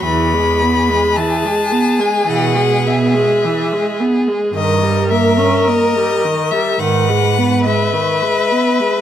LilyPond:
<<
  \new Staff \with { instrumentName = "Violin" } { \time 4/4 \key e \major \tempo 4 = 53 b''4 a''8. gis''16 fis''8 e''4 r8 | dis''8 e''8 dis''8. e''16 fis''8. e''4~ e''16 | }
  \new Staff \with { instrumentName = "Violin" } { \time 4/4 \key e \major gis'1 | ais'2 b'2 | }
  \new Staff \with { instrumentName = "Viola" } { \clef bass \time 4/4 \key e \major e16 gis16 b16 gis16 e16 gis16 b16 gis16 e16 gis16 b16 gis16 e16 gis16 b16 gis16 | dis16 g16 ais16 cis'16 ais16 g16 dis16 g16 dis16 gis16 b16 gis16 dis16 gis16 b16 gis16 | }
  \new Staff \with { instrumentName = "Cello" } { \clef bass \time 4/4 \key e \major e,4 r4 b,4 r4 | g,4 r4 gis,4 r4 | }
>>